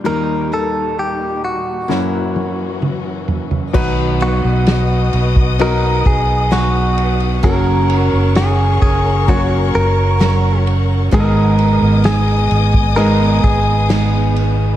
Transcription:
Already playing: G3
0.04 D#2 A#2 D#3 G3 A#3 D#4 G4 A#4
0.52 A#3 D#4 A4
0.99 G4
1.45 F#4
1.88 F#1 F#2 E3 F#3 A#3 C#4 E4 F#4, snare
1.93 A#4
2.36 high tom
2.82 mid tom
3.28 floor tom
3.51 floor tom
3.73 B1 B2 D#3 F#3 B3 D#4 F#4 B4 D#5 F#5 D#6, kick, crash
4.20 F#3 B3 D#4 F#4 B4, ride
4.44 B1
4.67 snare, ride
5.13 B1, ride
5.36 kick
5.59 F#3 B3 D#4 F#4 A#4 D#5, ride
6.06 B1 G#4, kick, ride
6.51 F#3 B3 D#4 F#4 B4, snare, ride
6.98 ride
7.20 ride
7.43 F#1 F#3 A#3 C#4 F#4 A#4 C#5 C#6, kick, ride
7.90 ride
8.13 F#1
8.35 G#4, snare, ride
8.82 F#1 G#4, kick, ride
9.28 F#3 A#3 C#4 F#4 A#4 C#5, kick, ride
9.75 F#1 A#4, ride
10.19 F#3 C#4 F#4 A#4, snare, ride
10.67 ride
11.11 G#1 G#2 D#3 G#3 B3 D#4 G#4 A#4 D#5 G#5 D#6, kick, ride
11.20 D#5
11.59 ride
11.82 G#1
12.04 G#4, snare, ride
12.27 ride
12.51 G#1, ride
12.74 kick
12.96 G#3 B3 D#4 G#4 A#4 D#5, ride
13.44 G#1 G#4, kick, ride
13.89 G#3 B3 D#4 G#4, snare, ride
14.36 ride

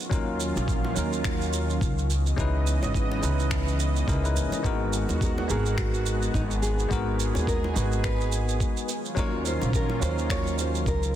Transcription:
Already playing: D#3 F#3 C#4 F4
0.09 D#2 F#3 C#4 D#4 F4 A#4, kick, shaker
0.40 shaker
0.56 A#1, high bongo, shaker
0.68 kick, shaker
0.85 high bongo
0.94 D#2 F#3 C#4 D#4 F4 A#4, shaker
1.13 shaker
1.24 finger snap, kick, shaker
1.41 shaker
1.53 shaker
1.70 shaker
1.81 C#2, kick, shaker
1.98 shaker
2.08 C#3 E3 B3 D#5, shaker
2.26 shaker
2.36 C#2 G#3 C#4 D#4 E4, kick, shaker
2.40 B4
2.67 shaker
2.82 G#1, high bongo, shaker
2.94 kick, shaker
3.12 high bongo
3.21 C#2 G#3 C#4 D#4 E4 B4, shaker
3.39 shaker
3.51 finger snap, kick, shaker
3.68 shaker
3.80 shaker
3.96 shaker
4.07 C#2 G#3 C#4 D#4 E4 A#4, kick, shaker
4.23 G#3 C#4 D#4 E4 B4, shaker
4.36 G#1, shaker
4.52 high bongo, shaker
4.63 G#1 G#3 B3 D#4 F#4 A#4, kick, shaker
4.93 shaker
5.09 D#2, high bongo, shaker
5.21 A#4, kick, shaker
5.38 high bongo
5.47 G#1 G#3 B3 D#4 F#4 G#4 A#4, shaker
5.66 shaker
5.78 F#4, finger snap, kick, shaker
5.94 shaker
6.06 shaker
6.22 shaker
6.34 G#1 D#4, kick, shaker
6.51 shaker
6.62 G#4, shaker
6.79 shaker
6.89 G#1 G#3 B3 D#4 F#4 G#4 A#4, kick, shaker
7.20 shaker
7.35 D#2, high bongo, shaker
7.47 A#4, kick, shaker
7.64 high bongo
7.73 G#1 G#3 B3 D#4 F#4 B4, shaker
7.92 shaker
8.04 B4, finger snap, kick, shaker
8.21 shaker
8.32 shaker
8.49 shaker
8.60 kick, shaker
8.77 shaker
8.88 D#3 F#3 C#4 F4, shaker
9.05 shaker
9.15 D#2 F#3 C#4 D#4 F4 A#4, kick, shaker
9.19 C#5
9.46 C5, shaker
9.62 A#1, high bongo, shaker
9.73 A#4, kick, shaker
9.89 high bongo
9.99 D#2 F#3 C#4 D#4 F4 A#4 C5, shaker
10.18 shaker
10.30 C#5, finger snap, kick, shaker
10.47 shaker
10.59 C5, shaker
10.75 shaker
10.86 C#2 A#4, kick, shaker
11.03 shaker

